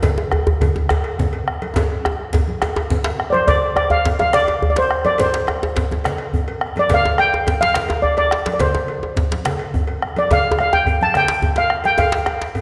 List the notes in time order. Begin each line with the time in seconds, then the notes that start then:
0.02 bombo low, cowbell, djembe slap, high conga, djembe tone, low conga, djembe bass
0.18 djembe tone
0.31 bombo rim, cowbell, high conga, djembe bass
0.47 high conga, djembe bass
0.60 bombo low, cowbell, djembe slap, djembe tone, djembe bass, low conga
0.76 djembe tone, high conga
0.89 bombo rim, cowbell, djembe slap, high conga, djembe bass
1.04 bombo rim, cowbell
1.19 bombo low, djembe tone, djembe bass, low conga
1.33 cowbell, high conga
1.47 bombo rim, high conga
1.62 cowbell, high conga
1.76 bombo low, cowbell, djembe slap, djembe tone, djembe bass, low conga
2.05 bombo rim, high conga, djembe tone
2.19 bombo rim, high conga
2.33 bombo low, cowbell, djembe tone, low conga, djembe bass
2.48 djembe slap, high conga
2.62 bombo rim, cowbell, djembe slap, djembe tone
2.76 cowbell, high conga, djembe tone
2.90 bombo rim, bombo low, high conga, djembe tone, low conga, djembe bass
3.04 cowbell, djembe slap
3.20 bombo rim
3.30 C5 D5, bombo rim, djembe slap
3.34 cowbell, high conga
3.47 D5, bombo low, cowbell, djembe slap, djembe tone, djembe bass, low conga
3.63 bombo rim, high conga
3.76 D5, bombo rim, cowbell, djembe tone
3.90 F5, djembe slap, djembe bass
4.05 bombo low, cowbell, djembe slap, high conga, djembe bass
4.19 F5, djembe tone, high conga
4.33 D5, bombo rim, cowbell, djembe slap, low conga
4.47 cowbell, djembe tone
4.62 bombo low, djembe bass
4.70 D5
4.76 C5, cowbell, djembe slap, high conga
4.91 bombo rim
5.05 D5, cowbell, djembe slap, high conga, djembe tone
5.18 C5, bombo low, cowbell, djembe slap, djembe tone, low conga, djembe bass
5.34 bombo rim, djembe slap
5.47 bombo rim, cowbell, djembe tone
5.62 djembe slap, djembe tone
5.76 bombo low, cowbell, djembe slap, high conga, djembe bass
5.91 high conga, djembe tone
6.04 bombo rim, cowbell, djembe slap, low conga
6.18 cowbell
6.33 bombo low, djembe bass
6.48 cowbell, high conga
6.61 bombo rim
6.76 D5, cowbell, djembe slap, djembe tone, high conga
6.89 bombo low, cowbell, djembe slap, djembe bass, low conga
6.94 F5
7.04 bombo rim, high conga, djembe tone
7.18 G5, bombo rim, cowbell
7.32 djembe slap, djembe tone
7.47 bombo low, cowbell, djembe slap, high conga, djembe bass
7.61 F5, djembe slap, djembe tone, high conga
7.74 bombo rim, cowbell, djembe slap, low conga
7.89 cowbell, djembe tone
8.02 D5, bombo low
8.17 D5, cowbell, djembe tone, high conga
8.31 bombo rim, djembe slap
8.46 cowbell, djembe slap, djembe tone, high conga
8.54 D5
8.59 C5, bombo low, cowbell, djembe slap, djembe bass, low conga
8.74 bombo rim, djembe tone, high conga
8.88 cowbell
9.03 bombo rim, djembe tone, high conga
9.16 bombo low, djembe slap, djembe bass
9.31 djembe slap, djembe tone, high conga
9.45 bombo rim, cowbell, djembe slap, high conga, low conga
9.59 bombo rim, cowbell
9.74 bombo low, djembe bass
9.87 bombo rim, cowbell
10.02 bombo rim, high conga
10.16 D5, cowbell, high conga, djembe tone
10.31 F5, bombo low, cowbell, djembe slap, djembe tone, low conga, djembe bass
10.45 bombo rim, high conga
10.51 djembe tone
10.58 F5, bombo rim, cowbell
10.73 G5, djembe slap, djembe tone
10.86 bombo low, cowbell, high conga, djembe bass
11.01 A5, djembe tone, high conga
11.14 G5, bombo rim, cowbell, djembe slap, low conga
11.28 djembe slap
11.42 bombo low, djembe tone, djembe bass
11.56 F5, cowbell, djembe slap, high conga
11.70 bombo rim
11.84 G5, cowbell, djembe slap, djembe tone, high conga
11.98 F5, bombo low, cowbell, djembe slap, djembe tone, low conga, djembe bass
12.12 bombo rim, djembe slap, high conga
12.26 bombo rim, cowbell, djembe tone
12.42 djembe slap
12.55 cowbell, high conga, djembe bass